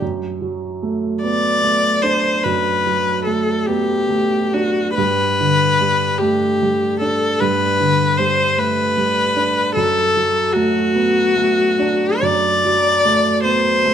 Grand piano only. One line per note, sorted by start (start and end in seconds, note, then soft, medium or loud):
0.02 2.41 F#2 soft
0.41 1.07 F#3 soft
0.83 1.48 A3 soft
1.23 1.64 B3 soft
1.63 2.28 A3 soft
2.03 2.69 D4 soft
2.45 4.93 F#2 soft
2.86 3.51 F#3 soft
3.27 3.92 A3 soft
3.68 4.10 B3 soft
4.09 4.80 A3 soft
4.54 4.97 D4 soft
4.98 7.36 G2 soft
5.40 6.04 D3 soft
5.81 6.44 G3 soft
6.21 6.61 A3 soft
6.62 7.25 G3 soft
7.01 7.64 D4 soft
7.41 9.72 G2 soft
7.80 8.42 D3 soft
8.19 8.82 G3 soft
8.58 8.97 A3 soft
8.97 9.60 G3 soft
9.36 9.76 D4 soft
9.76 12.19 F#2 soft
10.16 10.79 F#3 soft
10.56 11.20 A3 soft
10.95 11.37 B3 soft
11.36 12.06 A3 soft
11.79 12.47 D4 soft
12.22 13.94 F#2 soft
12.65 13.29 F#3 soft
13.05 13.69 A3 soft
13.45 13.85 B3 soft
13.85 13.94 A3 soft